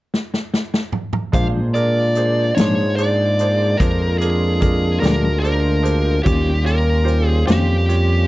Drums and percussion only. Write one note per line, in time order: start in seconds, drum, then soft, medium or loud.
0.14 snare medium
0.34 snare medium
0.54 snare medium
0.74 snare medium
0.92 mid tom medium
1.13 mid tom medium
1.33 kick loud
1.33 closed hi-hat medium
1.75 closed hi-hat soft
2.15 closed hi-hat medium
2.57 snare medium
2.57 closed hi-hat medium
2.98 closed hi-hat medium
3.39 closed hi-hat medium
3.80 kick medium
3.80 closed hi-hat medium
4.21 closed hi-hat medium
4.61 kick medium
4.61 closed hi-hat medium
5.03 snare medium
5.03 closed hi-hat medium
5.45 closed hi-hat soft
5.85 closed hi-hat soft
6.26 kick loud
6.26 closed hi-hat medium
6.67 closed hi-hat soft
7.08 closed hi-hat soft
7.48 snare medium
7.48 closed hi-hat medium
7.89 closed hi-hat medium